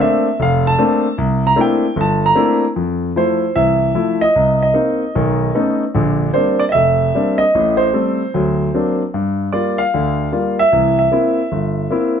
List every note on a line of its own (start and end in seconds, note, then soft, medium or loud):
0.00 0.27 A3 medium
0.00 0.27 A#3 medium
0.00 0.27 C4 medium
0.00 0.27 D4 medium
0.00 0.37 E5 medium
0.40 0.73 F1 medium
0.40 0.66 F5 medium
0.67 1.15 A5 loud
0.79 1.06 A3 medium
0.79 1.06 A#3 medium
0.79 1.06 C4 medium
0.79 1.06 D4 medium
1.18 1.52 C2 medium
1.47 1.58 A#5 loud
1.56 1.84 A3 medium
1.56 1.84 A#3 medium
1.56 1.84 C4 medium
1.56 1.84 D4 medium
1.56 1.85 E4 medium
1.61 1.96 G5 medium
1.96 2.31 G1 medium
2.01 2.24 A5 medium
2.26 2.67 A#5 loud
2.35 2.64 A3 medium
2.35 2.63 A#3 medium
2.35 2.63 C4 medium
2.35 2.64 D4 medium
2.35 2.64 E4 medium
2.76 3.10 F2 medium
3.16 3.43 F3 medium
3.16 3.43 A3 soft
3.16 3.43 E4 medium
3.16 3.57 C5 medium
3.56 3.90 C2 medium
3.56 3.90 E3 medium
3.56 4.23 E5 medium
3.94 4.22 F3 soft
3.94 4.23 A3 soft
3.94 4.23 E4 medium
4.21 4.61 D#5 loud
4.36 4.70 C2 medium
4.63 5.77 D#5 medium
4.74 5.02 A#3 medium
4.74 5.02 C4 soft
4.74 5.02 D#4 medium
5.15 5.49 B1 medium
5.15 5.49 D#3 medium
5.55 5.82 A3 medium
5.55 5.82 B3 soft
5.55 5.83 C#4 soft
5.55 5.82 D#4 medium
5.94 6.29 A#1 medium
5.94 6.28 D3 medium
6.34 6.62 G3 medium
6.34 6.62 A#3 soft
6.34 6.62 C4 soft
6.34 6.62 D4 medium
6.34 6.61 C5 medium
6.59 6.63 D5 medium
6.69 6.73 D#5 medium
6.69 7.35 E5 loud
6.75 7.09 F1 medium
7.15 7.42 G3 medium
7.15 7.42 A#3 soft
7.15 7.42 C4 soft
7.15 7.42 D4 medium
7.38 7.80 D#5 loud
7.55 7.88 A1 medium
7.55 7.88 A2 medium
7.77 8.93 C5 medium
7.93 8.21 G3 medium
7.93 8.21 A3 soft
7.93 8.21 C4 medium
8.34 8.68 D2 medium
8.34 8.68 F#3 medium
8.74 9.01 F#3 medium
8.74 9.01 A#3 soft
8.74 9.01 C4 soft
8.74 9.01 D4 medium
9.14 9.47 G2 medium
9.53 9.80 G3 medium
9.53 9.80 A#3 soft
9.53 9.81 F4 medium
9.53 9.79 D5 medium
9.78 10.54 F5 loud
9.94 10.27 D2 medium
9.94 10.27 D3 medium
10.32 10.60 G3 medium
10.32 10.60 A#3 medium
10.32 10.60 F4 medium
10.59 10.97 E5 loud
10.72 11.06 C2 medium
10.72 11.06 E3 medium
10.99 12.13 E5 medium
11.12 11.39 A#3 medium
11.12 11.39 C4 soft
11.12 11.39 E4 medium
11.52 11.86 G1 medium
11.91 12.18 A#3 medium
11.91 12.19 C4 soft
11.91 12.19 E4 medium